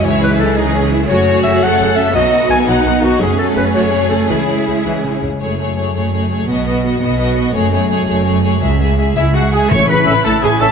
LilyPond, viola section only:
\new Staff \with { instrumentName = "Viola section" } { \clef bass \time 6/8 \key fis \dorian \tempo 4. = 112 << { gis2. | a2. | b2. | a2. |
gis2~ gis8 r8 | r2. | r2. | r2. |
r2. | \key a \major e'2. | } \\ { e2. | fis8 r8 cis8 fis8 cis8 cis8 | fis8 r8 dis8 fis8 dis8 dis8 | fis8 r8 cis8 fis8 cis8 cis8 |
e8 r8 cis8 e8 cis8 cis8 | a8 a8 a8 a8 a8 a8 | b8 b8 b8 b8 b8 b8 | a8 a8 a8 a8 a8 a8 |
gis8 gis8 gis8 gis8 gis8 gis8 | a8 cis8 e8 a8 cis8 e8 | } >> }